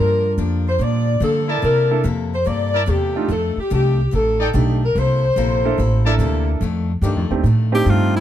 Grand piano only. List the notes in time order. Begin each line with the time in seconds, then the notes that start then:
Already playing: A#3 D4 F4 A#4
1.91 A#3 D4 E4 A4
3.16 A3 D4 D#4 F4
4.54 A3 D4 D#4 G4
5.65 A#3 D4 E4 A4
6.06 A#3 D4 E4 A4
7.31 A3 C4 D4 D#4 G4
7.72 A3 C4 D4 D#4 G4